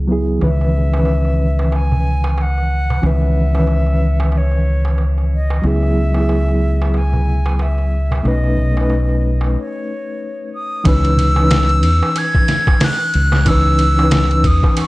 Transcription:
Already playing: fingered electric bass C#2, reed electric piano F#3 B3 E4 G#4
0.07 reed electric piano F#3 B3 E4
0.12 reed electric piano G#4
0.39 fingered electric bass C#2, reed electric piano D#3 E3 C#4, darbuka tek
0.44 reed electric piano B4, flute E5
0.61 darbuka tek
0.89 reed electric piano E3 C#4
0.94 reed electric piano D#3, darbuka tek
0.99 reed electric piano B4
1.05 darbuka tek
1.25 darbuka tek
1.59 darbuka tek
1.72 flute G#5, darbuka tek
1.92 darbuka tek, darbuka dum
2.24 darbuka tek
2.38 darbuka tek
2.42 flute F#5
2.58 darbuka tek
2.90 darbuka tek, darbuka dum
3.02 fingered electric bass C#2, reed electric piano D#3 E3 C#4, darbuka tek
3.06 reed electric piano B4, flute E5
3.22 darbuka tek
3.50 reed electric piano E3 C#4
3.55 reed electric piano D#3, darbuka tek
3.59 reed electric piano B4
3.67 darbuka tek
3.86 darbuka tek
4.20 darbuka tek
4.32 darbuka tek
4.38 flute C#5
4.51 darbuka tek
4.85 darbuka tek
4.98 darbuka tek
5.18 darbuka tek
5.35 flute D#5
5.50 darbuka tek
5.62 fingered electric bass C#2, reed electric piano F#3 B3 E4, darbuka tek
5.67 reed electric piano G#4, flute E5
5.83 darbuka tek
6.10 reed electric piano F#3 B3
6.14 reed electric piano E4, darbuka tek
6.20 reed electric piano G#4
6.29 darbuka tek
6.48 darbuka tek
6.82 darbuka tek
6.94 flute G#5, darbuka tek
7.13 darbuka tek, darbuka dum
7.46 darbuka tek
7.59 flute E5, darbuka tek
7.78 darbuka tek
8.11 darbuka tek, darbuka dum
8.23 fingered electric bass B1, reed electric piano A3 C#4 D#4, darbuka tek
8.28 reed electric piano B4, flute D#5
8.44 darbuka tek
8.57 darbuka dum
8.72 reed electric piano A3 C#4
8.77 reed electric piano D#4 B4, darbuka tek
8.90 darbuka tek
9.09 darbuka tek
9.41 darbuka tek
9.58 flute C#5
10.55 flute D#6
10.84 fingered electric bass C#2, reed electric piano E3 C#4 D#4, flute E6, kick, ride, darbuka tek
10.88 reed electric piano B4
11.04 ride, darbuka tek
11.17 ride, darbuka dum
11.34 reed electric piano E3 C#4, darbuka tek
11.40 reed electric piano D#4 B4
11.51 snare, ride, darbuka tek
11.69 ride, darbuka tek
11.83 fingered electric bass E2, ride
12.03 darbuka tek
12.16 flute G#6, ride, darbuka tek
12.35 kick, darbuka tek
12.48 snare, ride
12.67 kick, darbuka tek
12.80 flute F#6, snare, open hi-hat, darbuka tek
13.00 darbuka tek
13.14 fingered electric bass C#2, ride
13.32 snare, darbuka tek
13.46 reed electric piano E3 C#4 D#4, flute E6, kick, ride, darbuka tek
13.51 reed electric piano B4
13.66 darbuka tek
13.79 ride
13.94 reed electric piano E3 C#4
13.99 reed electric piano D#4, darbuka tek
14.03 reed electric piano B4
14.11 snare, ride, darbuka tek
14.31 ride, darbuka tek
14.44 fingered electric bass E2, flute D#6, kick, ride
14.63 kick, darbuka tek
14.77 flute C#6, ride, darbuka tek

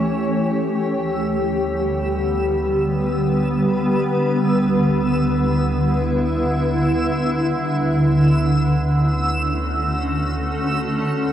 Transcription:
Already playing: synth drone D2, ambient pad E3 A3 C#4 G4 C#5, synth texture E6
0.53 synth drone D2, ambient pad D3
0.65 ambient pad G3
0.98 ambient pad B3
1.47 ambient pad B4
4.02 synth drone D2
4.63 ambient pad E4
7.47 synth drone D2
7.84 ambient pad A3 C#4
8.69 ambient pad F#4
9.09 ambient pad A4
10.94 synth drone D2, ambient pad E3

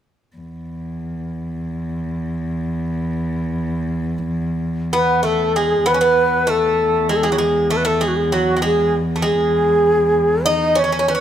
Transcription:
0.36 cello E2
4.93 bouzouki B3, ney B4
5.23 bouzouki A3, ney A4
5.56 bouzouki G#3, ney G#4
5.85 cello E2, bouzouki B3, ney B4
5.94 bouzouki C#4
6.01 bouzouki B3
6.47 bouzouki A3, ney A4
7.09 bouzouki G#3, ney G#4
7.16 ney A4
7.23 bouzouki G#3, ney G#4
7.32 bouzouki F#3
7.38 bouzouki G#3
7.70 bouzouki A3, ney A4
7.77 ney B4
7.85 bouzouki A3, ney A4
8.01 bouzouki G#3, ney G#4
8.08 ney F#4
8.16 ney G#4
8.24 ney G#4
8.32 bouzouki F#3, ney F#4
8.56 bouzouki F#3
8.62 bouzouki G#3, ney G#4
9.16 bouzouki A3
9.22 bouzouki G#3, ney G#4
10.46 bouzouki D#4, ney D#5
10.75 bouzouki C#4, ney C#5
10.84 bouzouki C#4
10.92 bouzouki C#4
10.99 bouzouki C#4, ney C#5
11.08 bouzouki C#4, ney B4
11.15 bouzouki C#4

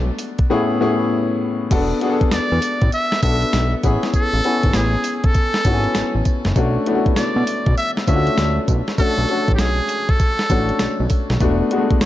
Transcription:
Already playing: analog synth bass B1, grand piano A3 B3 D4 F#4
0.19 open hi-hat, tambourine
0.39 kick, closed hi-hat
0.50 grand piano A2 B3 C#4 E4 G#4
0.81 grand piano A2 B3 C#4 E4 G#4
1.71 analog synth bass E1, grand piano B3 D4 F#4 A4, kick, closed hi-hat, crash, tambourine
2.01 grand piano B3 D4 F#4 G#4, closed hi-hat
2.10 grand piano A4
2.21 analog synth bass E2, kick, closed hi-hat
2.31 analog synth bass E2, muted trumpet D5, snare, closed hi-hat, tambourine
2.52 analog synth bass E2
2.62 open hi-hat, tambourine
2.81 analog synth bass A1, kick, closed hi-hat
2.92 muted trumpet E5, closed hi-hat, tambourine
3.12 snare
3.22 analog synth bass B1, grand piano B3 D4 F#4 A4, muted trumpet E5, kick, closed hi-hat, tambourine
3.42 closed hi-hat
3.53 analog synth bass B1, snare, closed hi-hat, tambourine
3.83 analog synth bass A1, grand piano B3 C#4 E4 G#4, kick, closed hi-hat, tambourine
4.03 snare, closed hi-hat
4.14 muted trumpet A4, kick, closed hi-hat, tambourine
4.33 analog synth bass A1
4.44 grand piano B3 C#4 E4 G#5, closed hi-hat
4.63 analog synth bass G#1, kick, closed hi-hat
4.73 analog synth bass A1, muted trumpet G#4, snare, closed hi-hat, tambourine
5.04 open hi-hat, tambourine
5.16 muted trumpet G#4
5.24 muted trumpet A4, kick, closed hi-hat
5.34 kick, closed hi-hat, tambourine
5.54 snare
5.65 analog synth bass G#1, grand piano B3 C#4 E4 F#4, kick, closed hi-hat, tambourine
5.73 grand piano G#5
5.84 closed hi-hat
5.95 analog synth bass A1, snare, closed hi-hat, tambourine
6.15 analog synth bass A1
6.25 kick, closed hi-hat, tambourine
6.45 analog synth bass F#1, snare, closed hi-hat
6.56 analog synth bass B1, grand piano A3 C#4 D4 F#4, kick, closed hi-hat, tambourine
6.86 grand piano A3 B3 D4 E4, closed hi-hat
6.94 grand piano F#4
7.06 analog synth bass B2, kick, closed hi-hat
7.16 analog synth bass B2, muted trumpet D5, snare, closed hi-hat, tambourine
7.36 analog synth bass B2
7.47 open hi-hat, tambourine
7.66 analog synth bass B1, kick, closed hi-hat
7.78 muted trumpet E5, closed hi-hat, tambourine
7.97 snare
8.07 analog synth bass D2, grand piano A3 C#4 D4 F4, muted trumpet E5, kick, closed hi-hat, tambourine
8.15 grand piano F#4
8.27 closed hi-hat
8.38 analog synth bass D2, snare, closed hi-hat, tambourine
8.68 analog synth bass B1, kick, closed hi-hat, tambourine
8.88 snare, closed hi-hat
8.98 grand piano A3 C#4 D4 F#4, muted trumpet A4, kick, closed hi-hat, tambourine
9.18 analog synth bass B1
9.29 grand piano A3 C#4 D4 F#4, closed hi-hat
9.48 analog synth bass A1, kick, closed hi-hat
9.55 muted trumpet G4, snare, closed hi-hat
9.59 analog synth bass B1, muted trumpet G#4, tambourine
9.89 open hi-hat, tambourine
10.09 muted trumpet A4, kick, closed hi-hat
10.20 kick, closed hi-hat, tambourine
10.39 snare
10.50 analog synth bass A1, grand piano A3 C#4 D4 F#4, kick, closed hi-hat, tambourine
10.69 closed hi-hat
10.79 analog synth bass B1, snare, closed hi-hat, tambourine
11.00 analog synth bass B1
11.10 kick, open hi-hat, tambourine
11.30 analog synth bass B1, snare, closed hi-hat
11.40 analog synth bass E1, grand piano A3 B3 D4 F#4, kick, closed hi-hat, tambourine
11.71 grand piano G#3 B3 D4 F#4, closed hi-hat
11.77 grand piano A3
11.91 analog synth bass E2, kick, closed hi-hat
12.01 analog synth bass E2, muted trumpet D5, snare, closed hi-hat, tambourine

